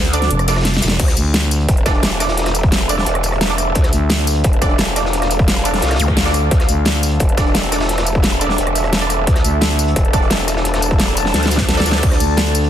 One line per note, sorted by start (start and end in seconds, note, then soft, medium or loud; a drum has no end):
0.00 0.29 D2 loud
0.00 0.11 D4 medium
0.00 0.96 D4 medium
0.00 0.11 A4 medium
0.00 0.96 A4 medium
0.00 0.97 C5 medium
0.00 0.11 D5 medium
0.05 closed hi-hat soft
0.05 tambourine soft
0.13 0.46 D4 loud
0.13 0.46 A4 loud
0.13 0.46 D5 loud
0.13 closed hi-hat medium
0.13 tambourine medium
0.22 snare soft
0.22 closed hi-hat soft
0.31 0.81 F1 loud
0.31 closed hi-hat loud
0.39 cross-stick medium
0.39 closed hi-hat soft
0.39 tambourine soft
0.48 0.56 D4 loud
0.48 0.56 A4 loud
0.48 0.56 D5 loud
0.48 snare loud
0.48 closed hi-hat medium
0.48 tambourine medium
0.56 cross-stick soft
0.56 snare medium
0.56 closed hi-hat medium
0.61 snare medium
0.61 closed hi-hat medium
0.65 snare medium
0.65 closed hi-hat loud
0.65 closed hi-hat medium
0.73 snare soft
0.73 tambourine soft
0.77 snare medium
0.82 0.98 E1 medium
0.82 snare loud
0.82 closed hi-hat medium
0.82 tambourine medium
0.88 snare loud
0.88 closed hi-hat medium
0.91 snare loud
1.00 1.15 D2 loud
1.00 12.70 D4 medium
1.00 kick loud
1.00 closed hi-hat loud
1.00 closed hi-hat medium
1.00 crash loud
1.08 cross-stick soft
1.08 snare medium
1.08 closed hi-hat soft
1.17 1.67 D2 loud
1.17 closed hi-hat medium
1.17 tambourine medium
1.22 12.70 A4 medium
1.34 snare loud
1.34 closed hi-hat loud
1.34 closed hi-hat medium
1.43 tambourine soft
1.51 closed hi-hat medium
1.51 open hi-hat medium
1.51 tambourine medium
1.61 closed hi-hat soft
1.69 3.05 E1 loud
1.69 4.50 E5 medium
1.69 kick loud
1.69 closed hi-hat loud
1.69 closed hi-hat medium
1.77 closed hi-hat soft
1.86 1.98 D4 medium
1.86 1.98 A4 medium
1.86 1.98 D5 medium
1.86 kick loud
1.86 snare loud
1.86 closed hi-hat medium
1.86 tambourine medium
1.95 closed hi-hat soft
2.03 snare loud
2.03 closed hi-hat medium
2.03 closed hi-hat loud
2.12 tambourine soft
2.20 2.87 D4 medium
2.20 2.87 A4 medium
2.20 2.87 D5 medium
2.20 cross-stick soft
2.20 snare loud
2.20 closed hi-hat medium
2.20 tambourine medium
2.29 snare loud
2.29 closed hi-hat medium
2.37 snare loud
2.37 closed hi-hat medium
2.37 closed hi-hat loud
2.46 cross-stick soft
2.46 snare loud
2.46 closed hi-hat medium
2.46 closed hi-hat soft
2.54 closed hi-hat medium
2.54 tambourine medium
2.63 kick loud
2.63 closed hi-hat soft
2.72 snare loud
2.72 closed hi-hat medium
2.80 closed hi-hat soft
2.80 tambourine soft
2.89 3.48 D4 loud
2.89 3.48 A4 medium
2.89 3.48 D5 loud
2.89 closed hi-hat medium
2.89 tambourine medium
2.98 snare soft
3.06 3.74 E1 loud
3.06 closed hi-hat medium
3.15 cross-stick medium
3.15 closed hi-hat soft
3.23 closed hi-hat medium
3.23 tambourine medium
3.32 cross-stick soft
3.32 closed hi-hat soft
3.41 snare loud
3.41 closed hi-hat medium
3.50 3.58 D4 medium
3.50 3.58 A4 medium
3.50 3.58 D5 medium
3.50 snare soft
3.50 tambourine soft
3.58 cross-stick soft
3.58 closed hi-hat medium
3.58 tambourine medium
3.75 3.91 D2 medium
3.75 kick loud
3.75 closed hi-hat medium
3.75 closed hi-hat loud
3.83 cross-stick soft
3.83 snare medium
3.83 closed hi-hat soft
3.93 4.43 D2 loud
3.93 closed hi-hat medium
3.93 tambourine medium
4.10 snare loud
4.10 closed hi-hat medium
4.19 tambourine soft
4.27 closed hi-hat medium
4.27 open hi-hat medium
4.27 tambourine medium
4.37 closed hi-hat soft
4.44 5.81 E1 loud
4.44 kick loud
4.44 closed hi-hat medium
4.48 7.26 F5 medium
4.53 closed hi-hat soft
4.62 4.74 D4 medium
4.62 4.74 A4 medium
4.62 4.74 D5 medium
4.62 kick loud
4.62 closed hi-hat medium
4.62 tambourine medium
4.69 closed hi-hat soft
4.78 snare loud
4.78 closed hi-hat loud
4.78 closed hi-hat medium
4.88 tambourine soft
4.96 5.63 D4 medium
4.96 5.63 A4 medium
4.96 5.63 D5 medium
4.96 cross-stick soft
4.96 snare medium
4.96 closed hi-hat medium
4.96 tambourine medium
5.06 snare medium
5.13 closed hi-hat medium
5.22 cross-stick soft
5.22 snare medium
5.22 closed hi-hat soft
5.31 closed hi-hat medium
5.31 tambourine medium
5.39 kick loud
5.39 closed hi-hat soft
5.48 snare loud
5.48 closed hi-hat medium
5.48 closed hi-hat loud
5.56 closed hi-hat soft
5.56 tambourine soft
5.65 6.24 D4 loud
5.65 6.24 A4 medium
5.65 6.24 D5 loud
5.65 closed hi-hat medium
5.65 tambourine medium
5.74 snare soft
5.74 closed hi-hat soft
5.82 5.98 C2 loud
5.82 snare loud
5.82 closed hi-hat medium
5.87 snare medium
5.87 closed hi-hat medium
5.91 cross-stick medium
5.91 snare medium
5.91 closed hi-hat medium
5.91 closed hi-hat soft
5.95 snare medium
5.95 closed hi-hat medium
5.99 6.50 D2 medium
5.99 closed hi-hat medium
5.99 tambourine medium
5.99 zap medium
6.08 kick medium
6.08 cross-stick soft
6.08 closed hi-hat soft
6.17 snare loud
6.17 snare medium
6.17 closed hi-hat medium
6.21 snare medium
6.21 closed hi-hat medium
6.25 6.33 D4 medium
6.25 6.33 A4 medium
6.25 6.33 D5 loud
6.25 snare medium
6.25 closed hi-hat medium
6.25 tambourine soft
6.29 snare medium
6.29 closed hi-hat medium
6.34 cross-stick soft
6.34 closed hi-hat medium
6.34 tambourine medium
6.51 6.67 D2 loud
6.51 kick loud
6.51 closed hi-hat loud
6.51 closed hi-hat medium
6.60 cross-stick soft
6.60 snare medium
6.60 closed hi-hat soft
6.69 7.19 D2 loud
6.69 closed hi-hat medium
6.69 tambourine medium
6.85 snare loud
6.85 closed hi-hat medium
6.94 tambourine soft
7.03 closed hi-hat medium
7.03 open hi-hat medium
7.03 tambourine medium
7.12 closed hi-hat soft
7.20 8.57 E1 loud
7.20 kick loud
7.20 closed hi-hat medium
7.24 10.02 E5 medium
7.29 closed hi-hat soft
7.37 7.50 D4 medium
7.37 7.50 A4 medium
7.37 7.50 D5 loud
7.37 kick loud
7.37 snare loud
7.37 closed hi-hat medium
7.37 tambourine medium
7.46 closed hi-hat soft
7.55 snare loud
7.55 closed hi-hat medium
7.63 tambourine soft
7.72 8.39 D4 medium
7.72 8.39 A4 medium
7.72 8.39 D5 medium
7.72 cross-stick soft
7.72 snare medium
7.72 closed hi-hat medium
7.72 tambourine medium
7.80 snare loud
7.80 closed hi-hat medium
7.89 snare medium
7.89 closed hi-hat medium
7.89 closed hi-hat loud
7.98 cross-stick soft
7.98 snare loud
7.98 closed hi-hat soft
7.98 closed hi-hat medium
8.06 closed hi-hat medium
8.06 tambourine medium
8.15 kick loud
8.15 closed hi-hat soft
8.23 snare loud
8.23 closed hi-hat medium
8.32 closed hi-hat soft
8.32 tambourine soft
8.41 9.00 D4 loud
8.41 9.00 A4 medium
8.41 9.00 D5 loud
8.41 closed hi-hat medium
8.41 tambourine medium
8.50 snare soft
8.58 9.26 E1 loud
8.58 closed hi-hat loud
8.58 closed hi-hat medium
8.67 cross-stick medium
8.67 closed hi-hat soft
8.75 closed hi-hat medium
8.75 tambourine medium
8.84 cross-stick soft
8.84 closed hi-hat soft
8.93 snare loud
8.93 closed hi-hat medium
8.93 closed hi-hat loud
9.01 9.09 D4 medium
9.01 9.09 A4 medium
9.01 9.09 D5 loud
9.01 snare soft
9.01 tambourine soft
9.10 cross-stick soft
9.10 closed hi-hat medium
9.10 tambourine medium
9.27 9.43 D2 medium
9.27 kick loud
9.27 closed hi-hat loud
9.27 closed hi-hat medium
9.35 cross-stick soft
9.35 snare medium
9.35 closed hi-hat soft
9.44 9.95 D2 medium
9.44 closed hi-hat medium
9.44 tambourine medium
9.61 snare loud
9.61 closed hi-hat loud
9.61 closed hi-hat medium
9.70 tambourine soft
9.79 closed hi-hat medium
9.79 open hi-hat medium
9.79 tambourine medium
9.88 closed hi-hat soft
9.96 11.33 E1 loud
9.96 12.70 A5 medium
9.96 kick loud
9.96 closed hi-hat loud
9.96 closed hi-hat medium
10.05 closed hi-hat soft
10.13 10.26 D4 medium
10.13 10.26 A4 medium
10.13 10.26 D5 medium
10.13 kick loud
10.13 closed hi-hat medium
10.13 tambourine medium
10.22 closed hi-hat soft
10.30 snare loud
10.30 closed hi-hat medium
10.30 closed hi-hat loud
10.39 tambourine soft
10.47 cross-stick soft
10.47 snare soft
10.47 closed hi-hat medium
10.47 tambourine medium
10.57 snare medium
10.65 closed hi-hat loud
10.74 cross-stick soft
10.74 snare medium
10.74 closed hi-hat soft
10.82 closed hi-hat medium
10.82 tambourine medium
10.91 kick loud
10.91 closed hi-hat soft
10.99 snare loud
10.99 closed hi-hat loud
10.99 closed hi-hat medium
11.08 closed hi-hat soft
11.08 tambourine soft
11.17 closed hi-hat medium
11.17 tambourine medium
11.25 snare soft
11.34 11.84 D2 loud
11.34 snare medium
11.34 closed hi-hat loud
11.34 closed hi-hat medium
11.43 snare medium
11.43 closed hi-hat soft
11.43 closed hi-hat medium
11.43 tambourine soft
11.51 snare soft
11.51 closed hi-hat medium
11.51 tambourine medium
11.57 kick medium
11.57 snare medium
11.57 closed hi-hat medium
11.69 snare medium
11.69 snare loud
11.69 closed hi-hat medium
11.77 12.70 D4 loud
11.77 12.70 A4 medium
11.77 12.70 D5 loud
11.77 snare medium
11.77 closed hi-hat medium
11.77 tambourine soft
11.80 snare loud
11.80 closed hi-hat medium
11.82 snare medium
11.86 12.02 D2 loud
11.86 snare loud
11.86 closed hi-hat medium
11.86 tambourine medium
11.92 snare loud
11.92 closed hi-hat medium
11.95 snare loud
12.03 12.19 D2 loud
12.03 kick loud
12.03 closed hi-hat medium
12.03 closed hi-hat loud
12.03 crash medium
12.12 cross-stick soft
12.12 snare medium
12.12 closed hi-hat soft
12.20 12.70 D2 loud
12.20 closed hi-hat medium
12.20 ride medium
12.20 tambourine medium
12.37 snare loud
12.37 closed hi-hat medium
12.37 closed hi-hat loud
12.46 tambourine soft
12.55 closed hi-hat medium
12.55 open hi-hat medium
12.55 ride medium
12.55 tambourine medium
12.64 closed hi-hat soft